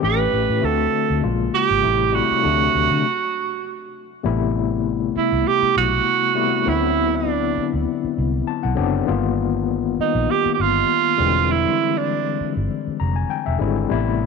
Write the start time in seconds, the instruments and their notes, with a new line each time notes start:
0.00 fingered electric bass A1, tine electric piano E3 A3 C#4 G4, tenor saxophone B4
0.33 fingered electric bass A1
0.50 fingered electric bass A2
0.61 fingered electric bass D2, tine electric piano D3 A3 C4 F#4, tenor saxophone A4
1.10 fingered electric bass D2
1.21 fingered electric bass A#1, tine electric piano C#3 G#3 A#3 F4
1.54 tenor saxophone G4
1.70 fingered electric bass G#1
1.82 fingered electric bass A1, tine electric piano C3 G3 A3 E4
2.12 tine electric piano C3 G3 A3 E4, tenor saxophone F#4
2.31 muted fingered electric bass stroke
2.42 fingered electric bass D2, tine electric piano C3 F3 A3 D4
2.49 tine electric piano F#3
2.75 fingered electric bass D2
2.91 fingered electric bass D3
4.23 fingered electric bass A1, tine electric piano C3 G3 A3 B3 E4
5.16 tenor saxophone E4, muted fingered electric bass stroke
5.32 fingered electric bass C2
5.47 tenor saxophone G4
5.62 muted fingered electric bass stroke
5.77 fingered electric bass B1, tenor saxophone F#4
6.34 tine electric piano C3 G3 A3 B3 E4
6.65 fingered electric bass D2, tine electric piano D3 F#3 B3 C4 E4, tenor saxophone E4
7.15 tenor saxophone D4
7.58 muted fingered electric bass stroke
7.74 fingered electric bass D2
8.04 muted fingered electric bass stroke
8.18 fingered electric bass C2
8.47 tine electric piano A5
8.63 fingered electric bass B1, tine electric piano F#5
8.75 fingered electric bass F#1, tine electric piano D3 F#3 B3 C4 D4 D5
9.06 fingered electric bass G1, tine electric piano D#3 G3 A#3 B3 F4
9.99 tenor saxophone D#4, muted fingered electric bass stroke
10.15 fingered electric bass A#1
10.31 tenor saxophone G4
10.45 muted fingered electric bass stroke
10.54 tenor saxophone G4
10.59 fingered electric bass G1, tenor saxophone F4
11.17 fingered electric bass E1, tine electric piano D3 E3 G3 G#3 C4
11.51 tenor saxophone E4
11.98 tenor saxophone D4
12.41 muted fingered electric bass stroke
12.57 fingered electric bass G1
12.87 muted fingered electric bass stroke
13.00 fingered electric bass F1, tine electric piano A#5
13.16 tine electric piano G#5
13.30 tine electric piano G5
13.46 fingered electric bass E1, tine electric piano E5
13.59 fingered electric bass G#1, tine electric piano D3 G3 G#3 C4 E4
13.89 fingered electric bass A1, tine electric piano C3 G3 A3 B3 E4